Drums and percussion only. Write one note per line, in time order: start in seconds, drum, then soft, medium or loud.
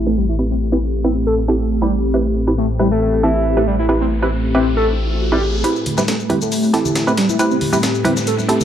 5.64 kick loud
5.64 closed hi-hat medium
5.64 shaker soft
5.76 shaker soft
5.86 closed hi-hat medium
5.86 low conga medium
5.98 snare soft
5.98 high conga medium
5.98 shaker medium
6.08 snare loud
6.08 closed hi-hat medium
6.08 shaker medium
6.20 shaker soft
6.29 kick medium
6.29 closed hi-hat medium
6.29 high conga medium
6.29 low conga medium
6.42 shaker medium
6.52 open hi-hat medium
6.52 shaker medium
6.63 shaker soft
6.74 snare soft
6.74 closed hi-hat medium
6.85 low conga medium
6.85 shaker medium
6.95 snare loud
6.95 closed hi-hat medium
6.95 shaker medium
7.07 shaker soft
7.17 snare loud
7.17 closed hi-hat medium
7.29 high conga medium
7.29 shaker medium
7.39 kick medium
7.39 closed hi-hat medium
7.39 shaker medium
7.51 shaker soft
7.61 open hi-hat medium
7.61 low conga medium
7.73 high conga medium
7.73 shaker medium
7.83 snare loud
7.83 closed hi-hat medium
7.83 shaker medium
7.95 shaker soft
8.04 kick medium
8.04 closed hi-hat medium
8.04 high conga loud
8.04 low conga medium
8.17 snare soft
8.17 shaker medium
8.27 closed hi-hat medium
8.27 shaker medium
8.39 high conga medium
8.39 shaker soft
8.49 closed hi-hat medium
8.61 closed hi-hat soft
8.61 low conga medium
8.61 shaker medium